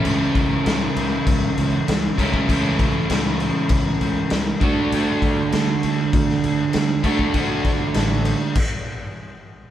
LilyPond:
<<
  \new Staff \with { instrumentName = "Overdriven electric guitar" } { \time 4/4 \key d \major \tempo 4 = 99 <cis e a cis' e'>2.~ <cis e a cis' e'>8 <cis e a cis' e'>8~ | <cis e a cis' e'>2.~ <cis e a cis' e'>8 <d a d' fis'>8~ | <d a d' fis'>2.~ <d a d' fis'>8 <d a d' fis'>8~ | <d a d' fis'>2 r2 | }
  \new Staff \with { instrumentName = "Fingered electric bass" } { \clef bass \time 4/4 \key d \major cis,8 cis,8 cis,8 cis,8 cis,8 cis,8 cis,8 cis,8 | cis,4 cis,4 cis,8 cis,8 cis,8 d,8 | d,8 d,8 d,8 d,8 d,8 d,8 d,8 d,8 | d,4 a,,4 r2 | }
  \new DrumStaff \with { instrumentName = "Drums" } \drummode { \time 4/4 cymc8 <cymc bd>8 <cymc sn>8 cymc8 <cymc bd>8 cymc8 <cymc sn>8 <cymc bd>16 bd16 | <cymc bd>8 <cymc bd>8 <cymc sn>8 cymc8 <cymc bd>8 cymc8 <cymc sn>8 <cymc bd>8 | cymc8 <cymc bd>8 <cymc sn>8 cymc8 <cymc bd>16 sn16 cymc8 <cymc sn>8 <cymc bd>16 bd16 | <cymc bd>8 <cymc bd>8 <cymc sn>8 cymc8 <cymc bd>4 r4 | }
>>